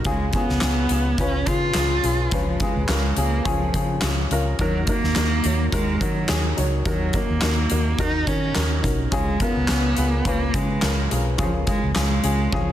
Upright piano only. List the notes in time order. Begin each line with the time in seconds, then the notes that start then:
0.05 C#3 C#4 F4 G#4
0.34 C#4 F4 G#4
0.62 C#4 F4 G#4
0.90 C#4 F4 G#4
1.19 C#4 F4 B4
1.47 C#4 F4 G#4
1.75 C#4 F4 G#4
2.03 C#4 F4 G#4
2.32 C#3 C#4 F4 B4
2.60 C#4 F4 G#4
2.89 C#4 F4 A#4
3.16 C#4 F4 G#4
3.45 C#4 F4 G#4
3.74 C#4 F4 G#4
4.02 C#4 F4 G#4
4.31 C#4 F4 A#4
4.60 D#3 D#4 F#4 A#4
4.87 D#4 F#4 A#4
5.17 D#4 F#4 A#4
5.45 D#4 F#4 C#5
5.72 D#4 F#4 A#4
6.00 D#4 F#4 A#4
6.28 D#4 F#4 G#4
6.57 D#4 F#4 C#5
6.85 D#3 D#4 F#4 A#4
7.13 D#4 F#4 A#4
7.42 D#4 F#4 A#4
7.70 D#4 F#4 A#4
7.98 D#4 F#4 A#4
8.27 D#4 F#4 A#4
8.54 D#4 F#4 A#4
8.82 D#4 F#4 A#4
9.11 C#3 C#4 F4 G#4
9.40 C#4 F4 A#4
9.69 C#4 F4 B4
9.96 C#4 F4 G#4
10.25 C#4 F4 B4
10.53 C#4 F4 G#4
10.81 C#4 F4 A#4
11.10 C#4 F4 G#4
11.38 C#3 C#4 F4 G#4
11.65 C#4 F4 G#4
11.94 C#4 F4 G#4
12.23 C#4 F4 G#4
12.52 C#4 F4 G#4